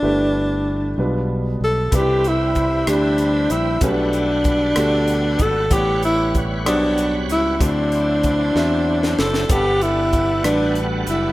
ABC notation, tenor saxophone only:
X:1
M:6/8
L:1/8
Q:3/8=63
K:G
V:1 name="Tenor saxophone"
D4 z A | G E2 D2 E | D4- D A | G E z D2 E |
D4- D A | G E2 D z E |]